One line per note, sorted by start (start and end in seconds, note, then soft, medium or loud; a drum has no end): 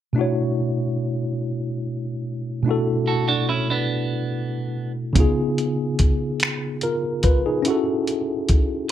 0.13 2.60 B2 medium
0.13 2.61 A3 soft
0.13 2.62 D4 medium
0.18 2.63 E4 medium
0.18 2.63 F#4 soft
0.18 2.64 C#5 medium
2.63 5.10 B2 soft
2.63 5.11 A3 soft
2.63 5.12 D4 soft
2.68 5.13 E4 soft
2.68 5.13 F#4 soft
2.68 5.14 A4 medium
3.07 3.27 F#4 soft
3.07 3.27 A4 soft
3.28 3.48 D4 medium
3.28 3.48 F#4 medium
3.49 3.69 C#4 soft
3.49 3.69 E4 medium
3.70 4.92 B3 soft
3.70 4.91 D4 soft
5.13 7.60 C#3 medium
5.13 7.61 B3 soft
5.13 6.79 D#4 soft
5.13 kick medium
5.13 closed hi-hat medium
5.18 6.80 F4 medium
5.18 6.81 G#4 medium
5.58 closed hi-hat soft
5.99 kick medium
5.99 closed hi-hat soft
6.40 finger snap medium
6.40 closed hi-hat soft
6.81 7.23 F4 soft
6.81 7.22 A#4 soft
6.81 closed hi-hat soft
7.23 7.44 F4 soft
7.23 7.44 B4 medium
7.23 kick medium
7.23 closed hi-hat soft
7.46 7.85 D#4 soft
7.46 7.85 G#4 medium
7.62 8.91 C#4 medium
7.62 8.91 E4 medium
7.62 closed hi-hat medium
7.68 8.91 F#4 medium
7.68 8.91 A4 medium
8.07 closed hi-hat soft
8.49 kick medium
8.49 closed hi-hat medium